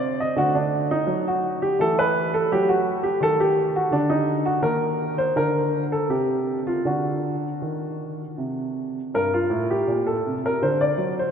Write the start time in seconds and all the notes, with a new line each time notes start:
Already playing: C3 C4 D5
0.20 D#5
0.36 D3 A3 F#4
0.55 D4
0.91 D#4
1.07 F#3
1.28 F#4
1.62 G4
1.79 E3 A3 A4
1.99 B4
2.34 A4
2.52 F#3 A3 G4
2.69 F#4
3.03 G4
3.20 D#3 A4
3.40 G4
3.76 F#4
3.91 D3 D4
4.10 D#4
4.46 F#4
4.62 D#3 A#3 A#4
5.18 C5
5.36 D3 A#4
5.92 A4
6.09 C3 G4
6.67 F4
6.85 D3 D4 F#4
7.62 D#3
8.38 C3
9.14 G2 A#4
9.34 F4
9.50 A2
9.70 G4
9.87 A#2
10.07 A4
10.27 C3
10.46 A#4
10.62 D3 C5
10.81 D5
10.98 F#3
11.19 C5